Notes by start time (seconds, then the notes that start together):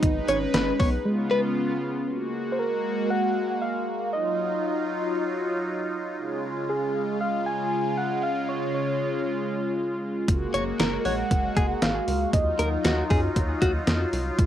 Already playing: D#4
0.03 G#1 G#3 D#4 B4, kick, closed hi-hat
0.28 G#1 C#4 C#5, closed hi-hat
0.54 G#1 B4, snare, closed hi-hat
0.80 B1 B3 C#5, kick, open hi-hat
1.05 C#3 G#3 B3 F4
1.31 G#3 B4
2.08 G#3 A#3 F#4
2.52 C5
2.59 A#4
3.10 F#5
3.62 F5
4.13 F#3 D#4 F4 D#5
6.18 C#3 G#3 F4
6.70 G#4
7.21 F5
7.46 G#5
7.98 F#5
8.23 F5
8.49 C#5
8.74 C#5
10.28 F#1 G#3 A#3 F#4, kick, closed hi-hat
10.54 F#1 C#5, closed hi-hat
10.80 F#1 A#4, snare, closed hi-hat
11.05 A#1 C#5 F#5, open hi-hat
11.31 F#1, kick, closed hi-hat
11.56 F#1 G#4, kick, closed hi-hat
11.82 G#1 F5, snare, closed hi-hat
12.08 C#2, open hi-hat
12.33 D#2 F#3 D#4 F4 D#5, kick, closed hi-hat
12.59 D#2 A#4, closed hi-hat
12.85 D#2 F#4, snare, closed hi-hat
13.10 F#2 G#4, kick, open hi-hat
13.36 D#2, kick, closed hi-hat
13.62 D#2 F#4, kick, closed hi-hat
13.87 F2, snare, closed hi-hat
14.13 C2, open hi-hat
14.39 C#2 C#3 G#3, kick, closed hi-hat